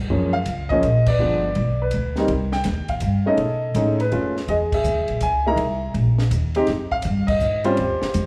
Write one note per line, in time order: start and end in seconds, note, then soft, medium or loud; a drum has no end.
0.10 0.46 F#2 medium
0.10 0.32 F3 medium
0.10 0.32 G#3 medium
0.10 0.32 A#3 medium
0.10 0.32 C#4 medium
0.33 0.68 F5 loud
0.46 0.82 C#2 medium
0.46 hi-hat pedal medium
0.46 ride medium
0.69 0.82 F3 medium
0.69 0.83 G#3 medium
0.69 0.83 A#3 medium
0.69 0.83 C#4 medium
0.69 1.04 D#5 loud
0.69 kick medium
0.83 1.18 A#1 medium
0.83 hi-hat pedal soft
0.83 ride medium
1.06 1.78 B4 medium
1.06 1.83 D5 medium
1.06 kick medium
1.06 crash medium
1.19 1.55 G1 medium
1.19 1.42 F3 medium
1.19 1.42 G#3 medium
1.19 1.42 B3 medium
1.19 1.42 D4 medium
1.55 1.92 B1 medium
1.55 ride medium
1.82 2.15 B4 medium
1.91 2.27 D2 medium
1.91 hi-hat pedal medium
1.91 ride medium
2.16 2.29 G3 medium
2.16 2.28 A#3 medium
2.16 2.29 C4 medium
2.16 2.29 D#4 medium
2.16 snare soft
2.28 2.64 C2 medium
2.28 ride medium
2.52 2.91 G5 loud
2.52 snare soft
2.64 3.01 D#2 loud
2.64 snare soft
2.64 hi-hat pedal medium
2.64 ride medium
2.88 3.28 F5 medium
2.88 kick medium
2.88 ride medium
3.00 3.37 G2 medium
3.00 hi-hat pedal medium
3.00 ride medium
3.26 3.38 G#3 medium
3.26 3.38 A3 medium
3.26 3.38 C#4 medium
3.26 3.38 D#4 medium
3.26 3.97 A4 medium
3.26 3.96 D#5 medium
3.37 3.74 B2 medium
3.37 ride medium
3.74 4.11 A2 medium
3.74 3.97 G#3 medium
3.74 3.98 A3 medium
3.74 3.98 C#4 medium
3.74 3.98 D#4 medium
3.74 hi-hat pedal medium
3.74 ride medium
4.00 4.34 B4 medium
4.00 ride soft
4.12 4.47 F2 medium
4.12 4.34 G#3 medium
4.12 4.34 A3 medium
4.12 4.34 C#4 medium
4.12 4.34 F4 medium
4.12 ride medium
4.37 snare soft
4.48 4.84 E2 medium
4.48 4.73 G#4 medium
4.48 4.54 D#5 medium
4.48 ride medium
4.72 5.20 G#4 medium
4.72 5.19 E5 medium
4.72 kick medium
4.72 crash medium
4.84 4.99 D#2 medium
4.84 hi-hat pedal medium
4.97 5.08 C#2 medium
5.08 5.20 B1 medium
5.08 ride soft
5.21 5.55 C#2 medium
5.21 5.45 G#5 loud
5.21 hi-hat pedal medium
5.21 ride medium
5.46 5.57 G#3 medium
5.46 5.58 A#3 medium
5.46 5.58 D#4 medium
5.46 5.58 E4 medium
5.46 5.92 E5 medium
5.46 5.92 A#5 loud
5.56 5.93 C2 medium
5.56 ride medium
5.94 6.30 A#1 medium
5.94 ride medium
6.18 snare medium
6.31 6.67 D#2 medium
6.31 hi-hat pedal medium
6.31 ride medium
6.55 6.67 G#3 medium
6.55 6.67 C4 medium
6.55 6.67 D#4 medium
6.55 6.67 G4 medium
6.55 ride soft
6.67 7.03 F2 medium
6.67 snare soft
6.67 ride medium
6.91 7.26 F5 loud
6.91 kick medium
7.02 7.40 G2 loud
7.02 hi-hat pedal medium
7.02 ride medium
7.27 7.66 D#5 medium
7.27 kick medium
7.27 crash medium
7.40 7.76 G#2 medium
7.40 hi-hat pedal medium
7.64 7.76 G3 medium
7.64 7.76 C4 medium
7.64 7.76 C#4 medium
7.64 7.76 F4 medium
7.64 8.26 G4 medium
7.64 8.26 C5 loud
7.64 ride medium
7.77 8.00 D#2 medium
7.77 ride medium
8.02 muted upright bass stroke soft
8.02 snare medium
8.14 8.26 F2 medium
8.14 hi-hat pedal medium
8.14 ride medium